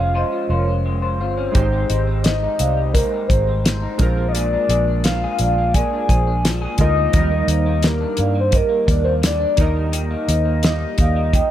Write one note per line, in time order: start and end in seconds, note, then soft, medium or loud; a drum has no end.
0.00 0.22 F1 medium
0.00 0.14 F3 medium
0.00 0.85 G#3 medium
0.00 1.14 G#3 medium
0.00 1.15 C#4 medium
0.00 1.36 C#4 soft
0.00 0.31 F4 medium
0.00 1.16 F4 medium
0.00 0.15 C5 medium
0.00 1.17 C#5 medium
0.00 0.51 F5 loud
0.15 1.62 F3 medium
0.15 0.50 C5 medium
0.15 0.49 D#5 medium
0.32 0.67 F4 medium
0.49 1.20 F1 medium
0.49 0.68 A#4 medium
0.49 1.02 C5 medium
0.49 0.67 C#5 medium
0.68 1.19 F4 medium
0.86 2.77 G#3 medium
1.02 4.03 C5 medium
1.19 1.48 G1 medium
1.19 1.54 F4 medium
1.19 2.26 C5 loud
1.37 1.62 C#4 medium
1.52 1.83 G#1 loud
1.52 2.93 G#2 medium
1.52 3.94 G#3 medium
1.52 3.95 D#4 soft
1.52 1.89 D#4 medium
1.52 3.96 G4 soft
1.52 kick loud
1.52 closed hi-hat medium
1.57 3.97 C5 medium
1.72 2.06 C4 medium
1.89 2.46 G#1 medium
1.89 2.42 D#4 medium
1.89 2.06 C5 soft
1.89 2.06 D#5 medium
1.89 closed hi-hat medium
2.07 2.59 C4 medium
2.24 3.63 D#3 medium
2.24 2.95 D#5 medium
2.24 snare loud
2.24 closed hi-hat medium
2.43 2.94 D#4 medium
2.59 3.02 C2 medium
2.59 3.11 C4 medium
2.59 2.77 D5 medium
2.59 2.76 F5 medium
2.59 closed hi-hat medium
2.77 4.07 G3 medium
2.94 4.00 G#2 medium
2.94 3.29 D#4 medium
2.94 3.30 A#4 loud
2.94 3.29 C5 medium
2.94 3.29 D#5 medium
2.94 kick medium
2.94 closed hi-hat loud
3.12 3.46 C4 medium
3.28 3.86 G#1 medium
3.28 3.81 D#4 medium
3.28 3.48 G#4 medium
3.28 4.27 C5 medium
3.28 3.47 C5 medium
3.28 kick medium
3.28 closed hi-hat medium
3.47 4.07 C4 medium
3.65 4.07 D#3 medium
3.65 snare loud
3.65 closed hi-hat loud
3.82 4.06 D#4 medium
3.98 4.55 A#1 medium
3.98 4.34 A#2 medium
3.98 6.74 G#3 medium
3.98 6.75 D4 medium
3.98 6.76 F4 medium
3.98 kick loud
3.98 closed hi-hat medium
4.02 6.77 A#4 medium
4.17 5.58 A#3 medium
4.28 4.34 D#5 medium
4.33 5.74 A#2 medium
4.33 4.69 G#4 medium
4.33 5.04 D5 loud
4.33 closed hi-hat medium
4.53 4.88 D4 medium
4.69 5.25 A#1 loud
4.69 5.22 G#4 medium
4.69 4.87 A#4 soft
4.69 4.87 D5 medium
4.69 closed hi-hat medium
4.88 5.40 D4 medium
5.04 6.44 F3 medium
5.04 5.76 F5 medium
5.04 snare loud
5.04 closed hi-hat medium
5.24 5.74 G#4 medium
5.39 5.81 A#1 medium
5.39 5.92 D4 soft
5.39 5.56 D5 medium
5.39 5.56 F5 medium
5.39 closed hi-hat medium
5.58 6.97 A#3 medium
5.74 7.21 A#2 medium
5.74 6.08 G#4 medium
5.74 6.08 A#4 medium
5.74 6.08 D5 medium
5.74 6.44 G#5 loud
5.74 kick medium
5.74 closed hi-hat medium
5.93 6.27 D4 medium
6.09 6.65 A#1 loud
6.09 6.60 G#4 medium
6.09 6.26 G#4 medium
6.09 6.26 C5 medium
6.09 kick medium
6.09 closed hi-hat medium
6.27 7.17 D4 medium
6.45 7.21 F3 medium
6.45 snare loud
6.45 closed hi-hat loud
6.62 7.21 G#4 medium
6.78 7.07 D2 medium
6.78 7.14 D3 soft
6.78 7.14 G#3 soft
6.78 7.15 F4 soft
6.78 7.15 A#4 medium
6.78 7.88 D#5 loud
6.78 kick medium
6.78 closed hi-hat medium
6.97 7.31 A#3 medium
7.11 7.42 D#2 medium
7.11 8.51 D#3 medium
7.11 7.19 F3 soft
7.11 9.54 A#3 medium
7.11 9.55 D#4 medium
7.11 kick loud
7.11 closed hi-hat medium
7.16 9.56 G3 medium
7.16 9.56 A#4 medium
7.32 7.66 A#3 medium
7.48 8.04 D#2 loud
7.48 7.66 C5 soft
7.48 7.65 D#5 medium
7.48 closed hi-hat medium
7.66 8.18 A#3 medium
7.83 8.35 G3 medium
7.83 snare loud
7.83 closed hi-hat medium
7.87 8.42 A#4 medium
8.01 8.54 D4 medium
8.17 8.61 G2 medium
8.17 8.68 A#3 medium
8.17 8.36 D5 medium
8.17 8.36 F5 medium
8.17 closed hi-hat medium
8.35 9.22 G3 medium
8.40 8.58 C5 medium
8.51 9.57 D#3 medium
8.51 8.87 A#4 medium
8.51 8.87 D#5 medium
8.51 kick medium
8.51 closed hi-hat medium
8.57 9.02 A#4 medium
8.69 9.04 A#3 medium
8.87 9.44 D#2 loud
8.87 9.40 D4 medium
8.87 9.06 A#4 medium
8.87 9.06 D5 medium
8.87 kick medium
8.87 closed hi-hat medium
9.04 10.10 A#3 medium
9.04 9.14 C5 medium
9.23 9.75 G3 medium
9.23 9.63 D5 loud
9.23 snare loud
9.23 closed hi-hat loud
9.40 9.95 D4 medium
9.56 10.14 D#2 medium
9.56 9.92 D#3 medium
9.56 11.51 A#3 medium
9.56 11.51 D#4 medium
9.56 kick loud
9.56 closed hi-hat medium
9.61 11.51 A#4 medium
9.61 11.51 D#5 loud
9.76 10.63 G3 medium
9.92 11.32 D#3 medium
9.92 closed hi-hat medium
10.10 10.44 A#3 medium
10.28 10.84 D#2 medium
10.28 10.46 C5 soft
10.28 10.45 D#5 medium
10.28 closed hi-hat medium
10.45 10.97 A#3 medium
10.63 11.16 G3 medium
10.63 snare loud
10.63 closed hi-hat medium
10.98 11.41 D#2 medium
10.98 11.49 A#3 medium
10.98 11.16 D5 medium
10.98 11.16 F5 medium
10.98 kick medium
10.98 closed hi-hat medium
11.16 11.51 G3 medium
11.33 11.51 D#3 medium
11.33 11.51 D#5 medium
11.33 11.51 G5 medium
11.33 kick medium
11.33 closed hi-hat medium